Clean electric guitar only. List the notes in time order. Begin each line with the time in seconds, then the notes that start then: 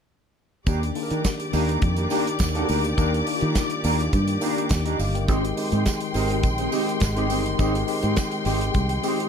0.66 A#3 D4 G4 A#4
0.82 muted clean electric guitar stroke
0.96 muted clean electric guitar stroke
1.11 A#3 D4 G4 A#4
1.25 muted clean electric guitar stroke
1.40 muted clean electric guitar stroke
1.53 A#3 D4 G4 A#4
1.69 A#3 D4 G4 A#4
1.83 muted clean electric guitar stroke
1.98 A#3 D4 G4 A#4
2.11 A#3 D4 G4 A#4
2.26 muted clean electric guitar stroke
2.40 muted clean electric guitar stroke
2.55 A#3 D4 G4 A#4
2.68 A#3 D4 G4 A#4
2.84 muted clean electric guitar stroke
2.97 A#3 D4 G4 A#4
3.13 muted clean electric guitar stroke
3.27 muted clean electric guitar stroke
3.42 A#3 D4 G4 A#4
3.71 muted clean electric guitar stroke
3.85 A#3 D4 G4 A#4
4.00 muted clean electric guitar stroke
4.14 muted clean electric guitar stroke
4.29 muted clean electric guitar stroke
4.42 A#3 D4 G4 A#4
4.57 A#3 D4 G4 A#4
4.71 muted clean electric guitar stroke
4.85 A#3 D4 G4 A#4
4.99 muted clean electric guitar stroke
5.14 muted clean electric guitar stroke
5.28 C4 D#4 G4 C5
5.43 muted clean electric guitar stroke
5.57 muted clean electric guitar stroke
5.72 C4 D#4 G4 C5
5.86 muted clean electric guitar stroke
6.01 muted clean electric guitar stroke
6.14 C4 D#4 G4 C5
6.30 C4 D#4 G4 C5
6.43 muted clean electric guitar stroke
6.58 C4 D#4 G4 C5
6.72 C4 D#4 G4 C5
6.87 muted clean electric guitar stroke
7.01 muted clean electric guitar stroke
7.16 C4 D#4 G4 C5
7.29 C4 D#4 G4 C5
7.45 muted clean electric guitar stroke
7.58 C4 D#4 G4 C5
7.74 muted clean electric guitar stroke
7.88 muted clean electric guitar stroke
8.03 C4 D#4 G4 C5
8.32 muted clean electric guitar stroke
8.46 C4 D#4 G4 C5
8.62 muted clean electric guitar stroke
8.75 muted clean electric guitar stroke
8.90 muted clean electric guitar stroke
9.04 C4 D#4 G4 C5
9.19 C4 D#4 G4 C5